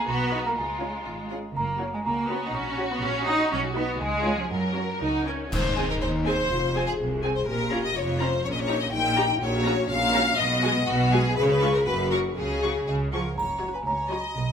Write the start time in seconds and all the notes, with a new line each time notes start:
0.07 B1 B3 F#4 B5
0.31 D#4 G#4 D#5
0.45 A#3 A#5
0.56 C#2 G#3 F4 G#5
0.80 C#4 F4 G#4 C#5
1.05 G#1 F4
1.30 C#4 F4 G#4
1.56 F#1 A#3 A#5
1.80 C#4 F#4 C#5
1.94 G#3 G#5
2.04 C#2 A#3 F#4 A#5
2.29 B3 C#4 F#4 C#5 B5
2.48 D#4
2.55 A#1 C#4 C#6
2.77 C#4 F#4 F#5
2.92 B3 B5
3.03 A#1 C#4 C#6
3.26 C#4 D#4 F#4 F#5 D#6
3.52 B1 C#4 C#6
3.75 B3 D#4 F#4 B4 F#5 B5
4.00 C#2 G#3 G#4 G#5
4.24 C#4 F4 B4 C#5
4.39 F3
4.50 F#2 F#3 A#4 F#5
4.75 C#4 F#4 A#4 C#5
5.01 C#2 D#4 F#4
5.26 C#4 A#4 C#5
5.52 G#1 G#2 D#4 C5, concert bass drum, crash
5.77 C4 G#4 G#5
5.90 A#4
6.02 D#2 C5
6.25 C4 G#4 C5 G#5
6.50 F1 F2 F4
6.75 C4 G#4 G#5
6.87 G#4
6.97 C2 G#4
7.22 C4 G#4 G#5
7.35 C5
7.47 A#1 A#2 G4 A#4
7.71 C#4 F4 A#5
7.84 D#5
7.96 F1 F2 F4 C#5
8.19 C#4 F4 C5 A#5
8.44 A#1 A#2 C#4 C#5
8.53 D#5
8.59 C#5
8.67 D#4 G4 A#5
8.82 D#5
8.92 A#1 A#2 D#4 G5
9.16 D#4 G4 A#5
9.39 A#1 A#2 F#4 C#5
9.64 C#4 F#4 A#5
9.87 A#1 A#2 C#4 F5
10.13 C#4 F#4 A#5
10.38 B1 B2 B3 D#5
10.62 G#3 F#4 G#5
10.87 B1 B2 F#4
11.12 G#3 F#4 G#4 G#5
11.36 C#2 C#3 G#4 B4
11.43 C#5
11.49 B4
11.61 G#3 F4 C#6
11.74 A#4
11.85 F#1 F#2 F#4 B4
12.10 F#3 F#4 A#4 C#6
12.36 C#2 C#3 G#4
12.62 F#3 G#4 C#6
12.87 C#2 C#3 G#4 D#5
13.13 F3 G#4 A#4 F#5 C#6
13.37 F#1 F#2 C#5 A#5, triangle
13.61 F#3 C#4 F#4 C#5
13.73 B4 G#5
13.86 C#2 C#5 A#5
14.09 F#3 C#4 F#4 C#5 D#5 B5
14.36 B1 B2